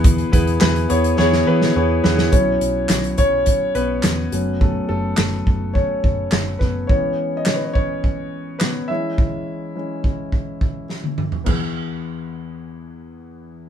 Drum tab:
CC |----------------|----------------|----------------|----------------|
HH |xxxx-xxx--------|x-x-xxx-x-x-x-x-|----------------|----------------|
CP |----x-----------|----x-------x---|----x-------x---|----x-------x---|
SD |----o---oo-o--oo|----o-------o---|----o-------o-o-|----o-------o---|
T1 |----------------|----------------|----------------|----------------|
T2 |----------------|----------------|----------------|----------------|
FT |----------------|----------------|----------------|----------------|
BD |o-o-------------|o-----o-o-------|o-----o-o-o---o-|o-----o-o-------|

CC |----------------|x---------------|
HH |----------------|----------------|
CP |----------------|----------------|
SD |------------o---|----------------|
T1 |-------------o--|----------------|
T2 |--------------o-|----------------|
FT |---------------o|o---------------|
BD |o-----o-o-o-----|o---------------|